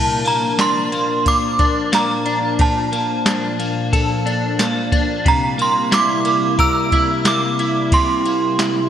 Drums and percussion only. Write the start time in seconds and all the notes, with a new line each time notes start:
0.26 ride
0.59 snare, ride, tambourine
0.92 ride
1.26 kick, ride
1.59 kick, ride
1.93 snare, ride, tambourine
2.26 ride
2.59 kick, ride
2.93 ride
3.26 snare, ride, tambourine
3.60 ride
3.93 kick, ride
4.27 ride
4.59 snare, ride, tambourine
4.92 kick, ride
5.25 kick, ride
5.59 ride
5.92 snare, ride, tambourine
6.25 ride
6.59 kick, ride
6.92 kick, ride
7.25 snare, ride, tambourine
7.59 ride
7.92 kick, ride
8.26 ride
8.59 snare, ride, tambourine